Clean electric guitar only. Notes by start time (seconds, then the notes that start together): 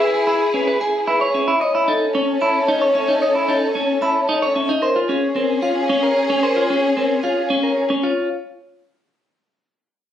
0.00 E5
0.14 G#4
0.27 E4
0.54 C#4
0.67 B4
0.81 G#4
1.07 E4
1.21 C#5
1.34 C#4
1.48 E4
1.61 D#5
1.75 E4
1.88 D#4
2.15 C#4
2.42 E4
2.68 D#4
2.81 C#5
2.95 C#4
3.08 D#4
3.22 D#5
3.35 E4
3.48 D#4
3.75 C#4
4.02 E4
4.29 D#4
4.42 C#5
4.56 C#4
4.69 D#4
4.82 C5
4.96 F4
5.09 C#4
5.36 C4
5.63 F4
5.89 C#4
6.03 A#4
6.30 C#4
6.43 C5
6.56 F4
6.70 C#4
6.97 C4
7.24 F4
7.50 C#4
7.63 A#4
7.90 C#4
8.03 F4